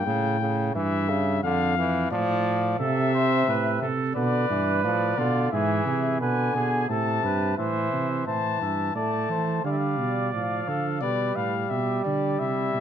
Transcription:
0.00 0.73 G5 medium
0.06 0.74 A2 medium
0.06 0.40 C#3 medium
0.40 0.74 C#3 medium
0.75 1.42 G2 medium
0.75 1.11 E3 medium
0.75 1.42 E5 medium
1.09 1.42 C#3 medium
1.43 2.10 F2 medium
1.43 1.77 D3 medium
1.43 2.10 F5 medium
1.78 2.11 E3 medium
2.11 2.79 A2 medium
2.11 2.79 F3 medium
2.11 2.78 D5 medium
2.79 3.47 C3 medium
2.79 3.87 C3 medium
2.79 3.12 A4 medium
2.79 3.86 E5 medium
3.15 3.48 C5 medium
3.48 3.81 A2 medium
3.48 3.82 B4 medium
3.82 4.15 C3 medium
3.82 4.15 A4 medium
4.16 4.49 B2 medium
4.16 4.47 D3 medium
4.16 5.20 B4 loud
4.16 4.80 D5 medium
4.49 4.85 G2 medium
4.49 4.83 E3 medium
4.84 5.17 A2 medium
4.84 5.17 F3 medium
4.84 5.51 D5 medium
5.18 5.51 B2 medium
5.18 5.51 D3 medium
5.18 5.52 F4 medium
5.52 5.85 G#2 medium
5.52 6.19 E3 medium
5.52 5.86 G#4 medium
5.52 6.19 E5 medium
5.86 6.22 C3 medium
5.86 6.20 G#4 medium
6.21 6.54 B2 medium
6.21 6.88 D3 medium
6.21 6.54 B4 medium
6.21 6.88 G#5 medium
6.55 6.88 B2 medium
6.55 6.89 G#4 medium
6.88 7.23 A2 medium
6.88 7.56 C3 medium
6.88 7.26 A4 medium
6.88 7.57 A5 medium
7.23 7.57 G2 medium
7.23 7.58 B4 medium
7.58 7.92 A2 medium
7.58 8.25 E3 medium
7.58 8.26 C5 medium
7.58 8.25 E5 medium
7.92 8.26 C3 medium
8.27 8.59 A2 medium
8.27 8.92 E3 medium
8.27 8.59 C5 medium
8.27 8.92 A5 medium
8.61 8.94 G2 medium
8.61 8.95 E5 medium
8.94 9.29 A2 medium
8.94 9.63 A3 medium
8.94 9.29 D5 medium
8.94 9.63 A5 medium
9.29 9.64 E3 medium
9.29 9.67 C5 medium
9.64 10.01 D3 medium
9.64 10.32 G3 medium
9.64 10.70 D5 medium
9.64 9.73 F5 medium
9.72 9.79 E5 medium
9.78 10.32 F5 medium
9.99 10.35 B2 medium
10.33 10.67 A2 medium
10.33 11.04 F3 medium
10.33 11.00 F5 medium
10.67 11.03 D3 medium
10.67 11.02 A4 medium
11.01 11.36 B2 medium
11.01 12.80 G3 medium
11.01 11.54 B4 medium
11.01 11.37 D5 medium
11.36 11.70 A2 medium
11.36 11.72 F5 medium
11.70 12.04 B2 medium
11.70 12.38 G4 medium
11.70 12.04 E5 medium
12.04 12.39 D3 medium
12.04 12.41 D5 medium
12.39 12.73 C3 medium
12.39 12.80 E4 medium
12.39 12.80 E5 medium
12.74 12.80 B2 medium

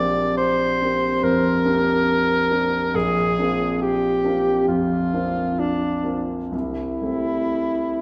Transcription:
0.00 2.94 A#1 medium
0.00 0.76 A#3 soft
0.00 0.76 C4 soft
0.00 0.76 D4 soft
0.00 0.77 G4 soft
0.00 0.34 D5 medium
0.37 1.25 C5 medium
0.81 1.20 A#3 soft
0.81 1.20 C4 soft
0.81 1.20 D4 soft
0.81 1.21 G4 soft
1.22 1.64 F2 soft
1.22 2.97 A#4 medium
1.65 2.46 A#3 soft
1.65 2.47 C4 soft
1.65 2.46 D4 soft
1.65 2.47 G4 soft
2.50 2.90 A#3 soft
2.50 2.90 C4 soft
2.50 2.90 D4 soft
2.50 2.90 G4 soft
2.94 3.36 A#1 medium
2.94 3.81 G#4 medium
3.38 4.20 A#3 soft
3.38 4.20 C4 soft
3.38 4.21 D4 soft
3.38 4.21 F4 soft
3.82 4.66 G4 medium
4.24 4.64 A#3 soft
4.24 4.64 C4 soft
4.24 4.64 D4 soft
4.24 4.64 F4 soft
4.67 5.11 F2 soft
4.67 5.61 F4 medium
5.13 6.01 A#3 soft
5.13 6.01 C4 soft
5.13 6.01 D4 soft
5.13 6.01 F4 soft
5.59 6.22 D4 medium
6.03 6.48 A#3 soft
6.03 6.48 C4 soft
6.03 6.49 D4 soft
6.03 6.49 F4 soft
6.52 7.01 C2 soft
6.52 8.02 E4 medium
7.01 7.97 G3 soft
7.01 7.97 A3 soft
7.01 7.97 C4 soft
7.01 7.98 E4 soft

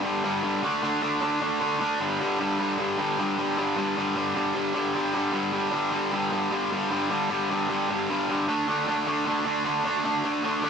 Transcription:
0.04 0.23 G2 medium
0.04 0.23 D3 medium
0.04 0.24 G3 medium
0.24 0.42 G2 medium
0.24 0.43 D3 medium
0.24 0.43 G3 medium
0.44 0.62 G2 medium
0.44 0.62 D3 medium
0.44 0.62 G3 medium
0.63 0.82 D3 loud
0.63 0.82 A3 loud
0.63 0.83 D4 loud
0.83 1.01 D3 medium
0.83 1.01 A3 medium
0.83 1.02 D4 medium
1.02 1.20 D3 medium
1.02 1.21 A3 medium
1.02 1.22 D4 medium
1.21 1.40 D3 medium
1.21 1.40 A3 medium
1.21 1.41 D4 medium
1.41 1.59 D3 loud
1.41 1.60 A3 loud
1.41 1.61 D4 loud
1.60 1.79 D3 medium
1.60 1.80 A3 medium
1.60 1.81 D4 loud
1.80 1.99 D3 medium
1.80 1.99 A3 medium
1.80 5.32 D4 medium
2.00 2.20 G2 medium
2.00 2.19 D3 loud
2.00 2.20 G3 loud
2.20 2.39 G2 medium
2.20 2.39 D3 loud
2.20 2.40 G3 loud
2.40 2.59 G2 medium
2.40 2.58 D3 medium
2.40 2.60 G3 loud
2.60 2.78 G2 medium
2.60 2.78 D3 medium
2.60 2.79 G3 medium
2.79 2.97 G2 medium
2.79 2.97 D3 medium
2.79 2.99 G3 medium
2.98 3.18 G2 medium
2.98 3.18 D3 loud
2.98 3.19 G3 loud
3.18 3.37 G2 medium
3.18 3.37 D3 loud
3.18 3.38 G3 loud
3.38 3.57 G2 medium
3.38 3.56 D3 medium
3.38 3.57 G3 loud
3.57 3.75 G2 medium
3.57 3.76 D3 medium
3.57 3.76 G3 medium
3.76 3.96 G2 medium
3.76 3.96 D3 medium
3.76 3.97 G3 loud
3.97 4.14 G2 medium
3.97 4.15 D3 medium
3.97 4.15 G3 medium
4.15 4.34 G2 medium
4.15 4.34 D3 medium
4.15 4.34 G3 loud
4.35 4.53 G2 medium
4.35 4.53 D3 medium
4.35 4.54 G3 medium
4.54 4.73 G2 loud
4.54 4.73 D3 loud
4.54 4.73 G3 loud
4.74 4.92 G2 medium
4.74 4.93 D3 medium
4.74 4.93 G3 medium
4.93 5.12 G2 medium
4.93 5.13 D3 medium
4.93 5.13 G3 loud
5.14 5.31 G2 medium
5.14 5.32 D3 medium
5.14 5.32 G3 medium
5.33 5.52 G2 loud
5.33 5.52 D3 loud
5.33 5.53 G3 loud
5.52 5.71 G2 medium
5.52 5.71 D3 medium
5.52 5.72 G3 loud
5.71 5.91 G2 medium
5.71 5.91 D3 loud
5.71 5.92 G3 loud
5.92 6.10 G2 medium
5.92 6.11 D3 medium
5.92 6.11 G3 medium
6.11 6.30 G2 loud
6.11 6.30 D3 loud
6.11 6.31 G3 loud
6.31 6.49 G2 medium
6.31 6.50 D3 medium
6.31 6.50 G3 loud
6.51 6.70 G2 loud
6.51 6.70 D3 loud
6.51 6.71 G3 loud
6.71 6.89 G2 medium
6.71 6.90 D3 medium
6.71 6.90 G3 medium
6.90 7.09 G2 loud
6.90 7.09 D3 loud
6.90 7.10 G3 loud
7.10 7.28 G2 medium
7.10 7.29 D3 loud
7.10 7.29 G3 loud
7.29 7.49 G2 medium
7.29 7.49 D3 medium
7.29 7.49 G3 loud
7.50 7.68 G2 medium
7.50 7.68 D3 loud
7.50 7.69 G3 medium
7.69 7.88 G2 loud
7.69 7.88 D3 loud
7.69 7.89 G3 loud
7.89 8.08 G2 medium
7.89 8.09 D3 medium
7.89 8.09 G3 loud
8.09 8.28 G2 loud
8.09 8.29 D3 loud
8.09 8.29 G3 loud
8.29 8.47 G2 medium
8.29 8.47 D3 medium
8.29 8.47 G3 medium
8.48 8.67 D3 loud
8.48 8.67 A3 loud
8.48 8.68 D4 loud
8.68 8.87 D3 loud
8.68 8.87 A3 medium
8.68 8.87 D4 loud
8.87 9.06 D3 loud
8.87 9.07 A3 medium
8.87 9.06 D4 loud
9.06 9.25 D3 medium
9.06 9.25 A3 medium
9.06 9.25 D4 loud
9.26 9.44 D3 loud
9.26 9.45 A3 loud
9.26 9.45 D4 loud
9.45 9.64 D3 medium
9.45 9.64 A3 medium
9.45 9.64 D4 loud
9.65 9.83 D3 medium
9.65 9.83 A3 loud
9.65 9.84 D4 loud
9.84 10.03 D3 medium
9.84 10.03 A3 medium
9.84 10.04 D4 loud
10.04 10.23 D3 loud
10.04 10.23 A3 loud
10.04 10.24 D4 loud
10.24 10.42 D3 loud
10.24 10.43 A3 loud
10.24 10.43 D4 loud
10.43 10.62 D3 medium
10.43 10.62 A3 loud
10.43 10.62 D4 loud
10.63 10.70 D3 medium
10.63 10.70 A3 medium
10.63 10.70 D4 medium

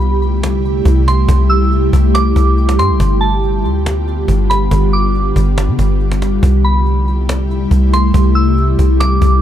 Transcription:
0.00 0.82 C2 loud
0.00 2.97 C3 medium
0.00 2.97 G3 medium
0.00 2.97 A3 medium
0.00 2.97 E4 medium
0.00 6.39 G4 medium
0.22 cajon slap soft
0.43 cajon slap loud
0.65 cajon slap soft
0.85 1.27 C2 loud
0.85 cajon bass loud
1.08 1.28 C6 medium
1.08 cajon slap medium
1.29 1.90 C2 loud
1.29 cajon bass loud
1.50 1.70 E6 medium
1.50 cajon slap soft
1.71 cajon slap soft
1.93 2.34 C2 loud
1.93 cajon bass loud
2.15 2.75 D6 loud
2.15 cajon slap loud
2.36 2.80 C2 loud
2.36 cajon bass loud
2.57 cajon slap soft
2.69 cajon slap loud
2.79 2.91 G2 loud
2.79 2.99 C6 medium
2.79 cajon slap loud
2.89 2.99 C2 loud
3.00 3.66 G1 loud
3.00 6.39 D3 medium
3.00 9.42 G3 medium
3.00 6.39 B3 medium
3.00 6.39 F4 medium
3.00 cajon bass loud
3.21 3.41 A5 medium
3.21 cajon slap soft
3.43 cajon slap soft
3.64 4.25 D2 loud
3.64 cajon slap soft
3.86 cajon slap loud
4.07 cajon slap soft
4.28 4.70 G1 loud
4.28 cajon bass loud
4.50 4.70 B5 medium
4.50 cajon slap medium
4.71 5.33 G1 loud
4.71 cajon bass loud
4.93 5.13 D6 medium
4.93 cajon slap soft
5.14 cajon slap soft
5.36 5.69 G1 loud
5.36 cajon bass loud
5.58 cajon slap loud
5.68 5.78 D3 loud
5.79 6.40 G1 loud
5.79 cajon bass loud
6.00 cajon slap soft
6.11 cajon slap loud
6.22 cajon slap medium
6.43 7.67 C2 loud
6.43 9.42 C3 medium
6.43 9.42 A3 medium
6.43 9.42 E4 medium
6.43 9.42 G4 loud
6.43 cajon bass loud
6.64 6.85 B5 medium
6.64 cajon slap soft
6.86 cajon slap soft
7.07 cajon slap soft
7.29 cajon slap loud
7.50 cajon slap soft
7.71 8.12 C2 loud
7.71 cajon bass medium
7.93 8.14 C6 medium
7.93 cajon slap loud
8.14 8.76 C2 loud
8.14 cajon bass loud
8.35 8.56 E6 medium
8.35 cajon slap soft
8.57 cajon slap soft
8.79 9.20 C2 loud
8.79 cajon bass loud
9.00 9.42 D6 medium
9.00 cajon slap loud
9.22 9.42 C2 loud
9.22 cajon bass loud

